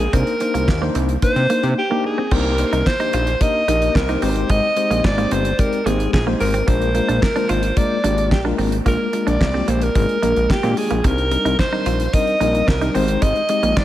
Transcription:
Already playing: G#4
0.13 C2 A#3 C4 D4 D#4 A#4 C5, kick, closed hi-hat
0.27 closed hi-hat
0.40 A#3 D4 D#4 C5, muted clean electric guitar stroke, closed hi-hat
0.54 C2 A#3, closed hi-hat
0.68 D#2, muted clean electric guitar stroke, kick, snare, clap
0.81 A#3 D4 D#4 C5
0.95 C2 C4, closed hi-hat
1.09 closed hi-hat
1.22 A#3 D4 D#4 C5, kick, closed hi-hat
1.36 C3, closed hi-hat
1.49 A#3 D4 D#4 C5, closed hi-hat
1.63 C3, closed hi-hat
1.78 G4
1.90 A#3 D4 D#4 G4
2.04 G#4, muted clean electric guitar stroke
2.18 C4
2.31 C2 A#3 C4 D4 D#4 G4 A#4 C5, kick, crash
2.58 A#3 D4 D#4 G4 C5, muted clean electric guitar stroke, closed hi-hat
2.73 C2 D#4, closed hi-hat
2.86 C5, muted clean electric guitar stroke, kick, snare, clap
2.99 A#3 D4 D#4 G4 C5, closed hi-hat
3.13 A#1 F4, closed hi-hat
3.27 closed hi-hat
3.40 A#3 D4 D#4 G4 A#4 D#5, kick, closed hi-hat
3.68 A#1 A#3 D4 D#4 G4 A#4, closed hi-hat
3.82 closed hi-hat
3.95 C2 A#4, muted clean electric guitar stroke, kick, snare, clap
4.09 A#3 D4 D#4 G4 C5, closed hi-hat
4.22 G#1 G#3 C4 D#4 G4 B4 C5, open hi-hat
4.29 C5
4.36 closed hi-hat
4.50 G#1 G#3 D#5, kick, closed hi-hat
4.76 G#3 C4 D#4 G4 C5, muted clean electric guitar stroke, closed hi-hat
4.90 A#1 A#3, closed hi-hat
5.04 G#1 D5, muted clean electric guitar stroke, kick, snare, clap
5.17 G#3 A#3 C4 D#4 G4 C5, closed hi-hat
5.31 G1 C4 C5, closed hi-hat
5.45 closed hi-hat
5.59 G#3 C4 D#4 G4 A#4 D5, kick, closed hi-hat
5.73 closed hi-hat
5.86 G#1 G#3 A#3 C4 D#4 G4 G#4 C5, closed hi-hat
6.00 closed hi-hat
6.13 A#1 G#4, kick, snare, clap
6.26 G#3 A#3 C4 D#4 G4 C5
6.40 G#1 A#4, muted clean electric guitar stroke, open hi-hat
6.54 C4, closed hi-hat
6.67 A#1 G#3 A#3 D4 F4 A#4 C5, kick, closed hi-hat
6.82 closed hi-hat
6.95 G#3 A#3 D4 F4 A#4, muted clean electric guitar stroke, closed hi-hat
7.08 A#1 D4, closed hi-hat
7.22 A#4, muted clean electric guitar stroke, kick, snare, clap
7.36 G#3 A#3 D4 F4 C5, closed hi-hat
7.49 G#1 F4 C5, closed hi-hat
7.63 closed hi-hat
7.77 G#3 A#3 D4 F4 A#4 D5, kick, closed hi-hat
8.04 G#1 G#3 A#3 D4 F4 G4, closed hi-hat
8.18 closed hi-hat
8.31 A#1 G4, muted clean electric guitar stroke, kick, snare, clap
8.44 G#3 A#3 D4 F4 A#4
8.58 G#1 C4, open hi-hat
8.72 closed hi-hat
8.85 A#1 G#3 A#3 D4 F4 A#4, kick, closed hi-hat
9.13 G#3 A#3 D4 F4 A#4, muted clean electric guitar stroke, closed hi-hat
9.27 A#1 D4 D5, closed hi-hat
9.40 C2, muted clean electric guitar stroke, kick, snare, clap
9.54 G#3 A#3 C4 D4 F4 G4
9.68 A#1 A#3 C5, closed hi-hat
9.81 A#4, closed hi-hat
9.95 G#1 G#3 A#3 D4 F4 G#4, kick, closed hi-hat
10.09 closed hi-hat
10.22 A#1 G#3 A#3 D4 F4 A#4, closed hi-hat
10.36 A#1, closed hi-hat
10.50 G4, kick, snare, clap
10.63 A#2 G#3 A#3 C4 D4 F4 G4, closed hi-hat
10.77 G#4, muted clean electric guitar stroke, open hi-hat
10.90 A#1 A#3, closed hi-hat
11.04 C2 G3 C4 D4 D#4 A#4, kick, closed hi-hat
11.18 closed hi-hat
11.31 G3 C4 D4 D#4 A#4, muted clean electric guitar stroke, closed hi-hat
11.45 C2 D#4, closed hi-hat
11.59 C5, muted clean electric guitar stroke, kick, snare, clap
11.72 G3 C4 D4 D#4 A#4
11.86 A#1 F4, closed hi-hat
12.00 closed hi-hat
12.13 G3 C4 D4 D#4 A#4 D#5, kick, closed hi-hat
12.27 closed hi-hat
12.40 A#1 G3 C4 D4 D#4 A#4, closed hi-hat
12.55 closed hi-hat
12.68 C2 A#4, muted clean electric guitar stroke, kick, snare, clap
12.81 G3 C4 D4 D#4 A#4, closed hi-hat
12.95 G#1 G#3 C4 D#4 G4 C5, open hi-hat
13.08 closed hi-hat
13.22 G#1 G#3 D#5, kick, closed hi-hat
13.36 closed hi-hat
13.49 G#3 C4 D#4 G4 D#5, muted clean electric guitar stroke, closed hi-hat
13.63 A#1 A#3, closed hi-hat
13.77 G#1 D5, muted clean electric guitar stroke, kick, snare, clap

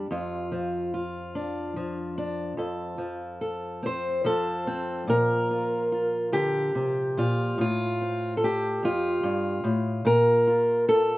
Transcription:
Already playing: G4
0.11 F2 F4
0.52 F3
0.94 F4
1.35 D4
1.76 F3
2.18 D4
2.57 F2 A4
2.98 F3
3.41 A4
3.83 C4 C5
4.24 F3 A4
4.67 C4
5.07 A#2 A#4
5.51 F4
5.92 F4
6.32 D3 G4
6.75 C3
7.17 A#2 F4
7.58 A2 F4
8.01 C4
8.37 A4
8.44 G4
8.83 F2 F4
9.23 G2
9.64 A2
10.05 A#2 A#4
10.47 F4
10.89 A4

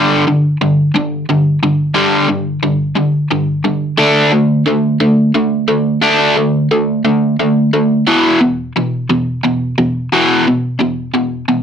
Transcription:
Already playing: G2 D3 G3
0.28 G2 D3
0.61 G2 D3
0.94 G2 D3
1.30 G2 D3
1.63 G2 D3
1.95 G2 D3 G3
2.29 G2 D3
2.63 G2 D3
2.95 G2 D3
3.31 G2 D3
3.64 G2 D3
3.98 D3 A3 D4
4.32 D3 A3
4.67 D3 A3
5.00 D3 A3
5.34 D3 A3
5.68 D3 A3
6.02 D3 A3 D4
6.36 D3 A3
6.71 D3 A3
7.05 D3 A3
7.39 D3 A3
7.73 D3 A3
8.07 E2 B2 E3
8.40 E2 B2
8.76 E2 B2
9.10 E2 B2
9.44 E2 B2
9.78 E2 B2
10.12 E2 B2 E3
10.47 E2 B2
10.79 E2 B2
11.14 E2 B2
11.48 E2 B2

